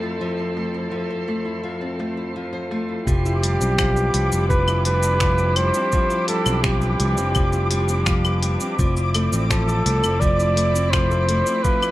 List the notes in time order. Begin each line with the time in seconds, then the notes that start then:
Already playing: F2 F3 A3 C4 A4 C5 C7
0.03 E4
0.21 F3
0.39 C4
0.57 A3, open hi-hat
0.74 E4
0.91 F3
1.10 C5
1.28 A3, open hi-hat
1.45 E4
1.63 F3
1.81 C4
1.99 A3, open hi-hat
2.17 E4
2.36 F3
2.53 C5
2.71 A3, open hi-hat
2.89 E4
3.06 F1 F3 D4 E4 G4 D6, kick, cabasa
3.26 E4, cabasa
3.43 G3, open hi-hat
3.60 B1 C4, cabasa
3.78 F3, finger snap, kick, cabasa, claves
3.96 B4, cabasa
4.14 C2 G3, open hi-hat
4.32 F1 C4, cabasa
4.49 F3 B4, kick, cabasa
4.68 E4, cabasa, claves
4.85 G3 B4, open hi-hat
5.03 C4, cabasa
5.20 F3, finger snap, kick, cabasa
5.38 cabasa
5.56 G3 C5, open hi-hat, claves
5.74 C4, cabasa
5.92 F3, kick, cabasa
6.10 E4, cabasa
6.28 G3 A4, open hi-hat
6.46 B1 C4, cabasa, claves
6.63 F3 G4, finger snap, kick, cabasa
6.81 B4, cabasa
7.00 C2 G3, open hi-hat
7.17 F1 C4, cabasa
7.35 F3, kick, cabasa, claves
7.53 E4, cabasa
7.71 G3, open hi-hat
7.89 C4, cabasa
8.06 F3, finger snap, kick, cabasa
8.25 B4, cabasa, claves
8.43 G3, open hi-hat
8.60 C4, cabasa
8.79 F1 F3 A3 C4 E4, kick, cabasa
8.97 E4, cabasa
9.14 A3, open hi-hat, claves
9.32 A1 C4, cabasa
9.50 F3 A4, finger snap, kick, cabasa
9.68 A4, cabasa
9.86 C2 A3, open hi-hat
10.03 F1 C4, cabasa, claves
10.20 F3 D5, kick, cabasa
10.38 E4, cabasa
10.56 A3, open hi-hat
10.74 C4, cabasa
10.91 F3 C5, finger snap, kick, cabasa, claves
11.10 A4, cabasa
11.28 A3, open hi-hat
11.46 C4, cabasa
11.63 F3 B4, kick, cabasa
11.82 E4, cabasa, claves